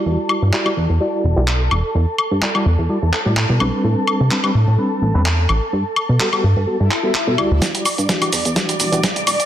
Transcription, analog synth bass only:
X:1
M:4/4
L:1/16
Q:"Swing 16ths" 1/4=127
K:Em
V:1 name="Analog synth bass" clef=bass
E,, z2 G,, z2 E,, E,, z2 E,,, B,,,3 E,,, z | E,, z2 G,, z2 E,, E,, z E,, z A,,2 B,, B,,, z | A,, z2 C, z2 A,, A,, z2 A,,, E,,3 A,,, z | G,, z2 B,, z2 G,, G,, z G,, z3 B,, D,, D,, |
E,, z2 G,, z2 E,, E,, z2 E,,, B,,,3 E,,, z |]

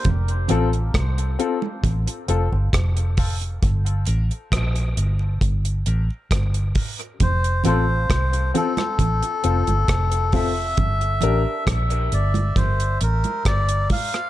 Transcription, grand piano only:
X:1
M:4/4
L:1/16
Q:1/4=67
K:Gdor
V:1 name="Grand piano"
z2 [CFA] z3 [CFA] z2 [FA] [CFA] z3 [CFA] z | z2 [DGB] z3 [DGB] z2 [GB] [DGB] z3 [DGB] z | z2 [CFA] z3 [CFA] z2 [FA] [CFA] z3 [CFA] z | z2 [DGB] z12 z |]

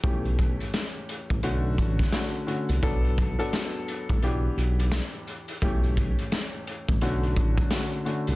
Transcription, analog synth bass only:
X:1
M:4/4
L:1/16
Q:"Swing 16ths" 1/4=86
K:Amix
V:1 name="Analog synth bass" clef=bass
B,,,4 z3 A,,, B,,,2 A,,,2 z3 =C,, | B,,,4 z3 A,,, B,,,2 B,,,3 z3 | B,,,4 z3 A,,, B,,,2 A,,,2 z3 =C,, |]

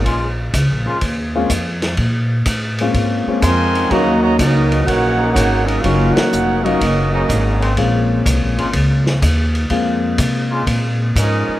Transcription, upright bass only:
X:1
M:4/4
L:1/8
Q:"Swing" 1/4=124
K:Bbm
V:1 name="Upright bass" clef=bass
B,,,2 (3D,, B,,, A,,, E,,2 F,,2 | B,,2 =A,,2 _A,, z F,,2 | E,,2 D,,2 B,,,2 A,,,2 | G,,, z F,,,2 G,,,2 A,,,2 |
B,,,2 (3C,, B,,, A,,, D,,2 E,,2 | F,,2 C,2 B,,2 A,, z |]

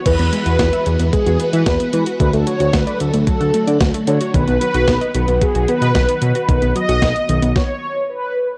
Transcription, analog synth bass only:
X:1
M:4/4
L:1/16
Q:1/4=112
K:E
V:1 name="Analog synth bass" clef=bass
E,, E,, z E,, E,, z E,, E,, z E,, z E, E,, z E, z | =D,, D,, z D,, D,, z D,, D,, z D,, z =D, D,, z D, z | B,,, B,,, z B,,, B,,, z B,,, B,,, z B,,, z B,, B,,, z B,, z | B,,, B,,, z B,,, B,,, z B,,, B,,, z8 |]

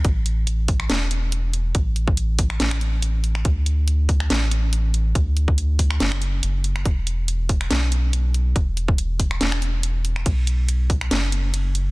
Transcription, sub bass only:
X:1
M:4/4
L:1/8
Q:"Swing 16ths" 1/4=141
K:D
V:1 name="Sub bass" clef=bass
A,,,4 E,,,4 | A,,,4 A,,,4 | D,,4 A,,,4 | D,,4 F,,,2 F,,,2 |
E,,,4 B,,,4 | E,,,4 E,,,4 | B,,,4 F,,,4 |]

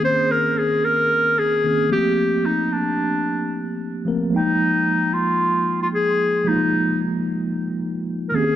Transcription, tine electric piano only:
X:1
M:4/4
L:1/8
Q:"Swing 16ths" 1/4=112
K:Fm
V:1 name="Tine electric piano"
[E,B,CDA]6 [E,B,CDA] [F,=A,B,CG]- | [F,=A,B,CG]6- [F,A,B,CG] [F,A,B,CB] | [F,A,B,Eg]8 | [F,A,B,EF]6- [F,A,B,EF] [E,B,CDGA] |]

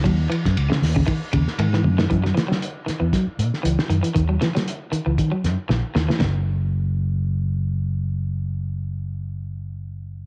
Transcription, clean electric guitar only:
X:1
M:4/4
L:1/16
Q:"Swing 16ths" 1/4=117
K:D#phr
V:1 name="Clean electric guitar" clef=bass
F,2 E,2 z C,2 C, D,2 C,2 D, E,2 D, | E, F, E, F,2 z D, E,2 z3 E,2 D, E, | D, F, E, F,2 z D, E,2 F,2 z3 D, E, | z16 |
z16 |]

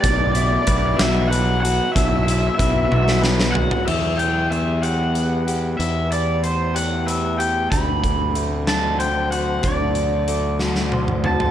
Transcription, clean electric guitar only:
X:1
M:6/8
L:1/8
Q:3/8=62
K:Em
V:1 name="Clean electric guitar"
B,, E B F B F | B,, E B F B F | E,2 B, G2 G | E,3 G B G |
D,2 A,2 c F | D,2 A, F c F |]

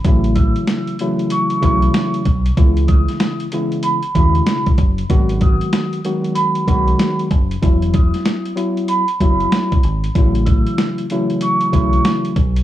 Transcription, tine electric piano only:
X:1
M:4/4
L:1/8
Q:"Swing 16ths" 1/4=95
K:Alyd
V:1 name="Tine electric piano" clef=bass
[C,E,F,A,E]3 [C,E,F,A,E]2 [C,E,F,A,E]2 z | [C,E,G,B,E]3 [C,E,G,B,E] z [B,,C,G,B,E]2 z | [D,F,G,B,F]3 [D,F,G,B,F]2 [D,F,G,B,F]2 z | [F,B,E]3 [F,B,E] z [F,B,E]2 z |
[C,E,F,A,E]3 [C,E,F,A,E]2 [C,E,F,A,E]2 z |]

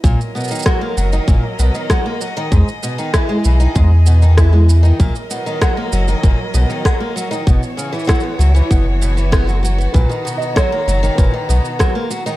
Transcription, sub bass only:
X:1
M:4/4
L:1/8
Q:1/4=97
K:B
V:1 name="Sub bass" clef=bass
B,,, z2 F,,, F,,, B,,, z2 | E,, z2 B,,, E,,4 | B,,, z2 F,,, F,,, B,,, z2 | F,,, z2 C,, F,,,4 |
B,,, z2 F,,, F,,, B,,, z2 |]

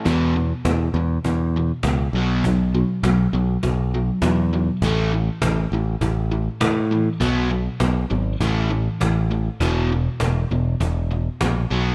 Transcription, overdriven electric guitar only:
X:1
M:4/4
L:1/8
Q:1/4=100
K:Bmix
V:1 name="Overdriven electric guitar" clef=bass
[E,,B,,E,] [E,,B,,] [E,,B,,] [E,,B,,] [E,,B,,] [E,,B,,] [E,,B,,] [B,,F,B,] | [B,,F,] [B,,F,] [B,,F,] [B,,F,] [B,,F,] [B,,F,] [B,,F,] [B,,F,] | [A,,E,A,] [A,,E,] [A,,E,] [A,,E,] [A,,E,] [A,,E,] [A,,E,] [A,,E,] | [B,,F,B,] [B,,F,] [B,,F,] [B,,F,] [A,,E,A,] [A,,E,] [A,,E,] [A,,E,] |
[E,,B,,E,] [E,,B,,] [E,,B,,] [E,,B,,] [E,,B,,] [E,,B,,] [E,,B,,] [B,,F,B,] |]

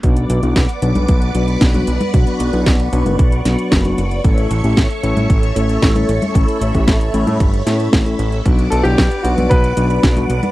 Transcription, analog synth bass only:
X:1
M:4/4
L:1/16
Q:1/4=114
K:Bm
V:1 name="Analog synth bass" clef=bass
B,,,2 B,,, B,,, B,,, z B,,, B,,, B,,,2 B,,,2 B,,,2 B,,, z | B,,, z B,,, B,,, B,,,2 B,,, F,,, B,,,2 B,,, z F,,,2 F,,,2 | A,,,2 A,,, A,,, A,,, z A,,, A,,, A,,,2 A,,,2 A,,,2 A,,, z | A,,, z A,,, A,,, A,,,2 A,,, A,, G,,,2 A,,2 A,,,2 A,,,2 |
B,,,2 B,,, B,,, B,,, z B,,, B,,, B,,,2 B,,,2 B,,,2 B,,, z |]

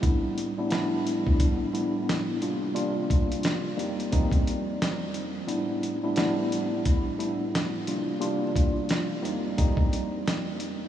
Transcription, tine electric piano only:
X:1
M:4/4
L:1/16
Q:"Swing 16ths" 1/4=88
K:Aphr
V:1 name="Tine electric piano"
[A,,G,=B,DE]3 [A,,G,B,DE] [A,,G,B,DE]6 [A,,G,B,DE]4 [C,G,_B,DF]2 | [C,G,B,DF]6 [F,,G,B,C_E]2 [F,,G,B,CE]6- [F,,G,B,CE] z | [A,,G,=B,DE]3 [A,,G,B,DE] [A,,G,B,DE]6 [A,,G,B,DE]4 [C,G,_B,DF]2 | [C,G,B,DF]6 [F,,G,B,C_E]2 [F,,G,B,CE]6- [F,,G,B,CE] z |]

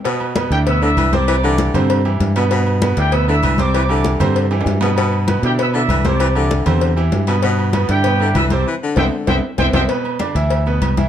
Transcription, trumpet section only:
X:1
M:4/4
L:1/8
Q:1/4=195
K:Clyd
V:1 name="Trumpet section"
z3 [Gg] [ee'] [ee']2 [dd']- | [dd']3 z4 z | z3 [Gg] [ee'] [ee']2 [dd']- | [dd']3 z4 z |
z3 [Gg] [ee'] [ee']2 [dd']- | [dd']3 z4 z | z3 [Gg]3 [ee'] [dd'] | z2 [ceg] z [ceg] z [ceg] [ceg] |
z8 |]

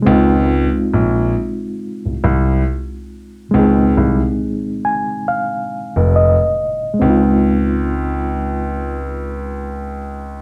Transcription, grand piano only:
X:1
M:4/4
L:1/16
Q:"Swing 16ths" 1/4=69
K:Db
V:1 name="Grand piano" clef=bass
D,,3 z B,,,2 z3 C,, C,,2 z4 | D,,2 C,, z8 F,,,2 z3 | D,,16 |]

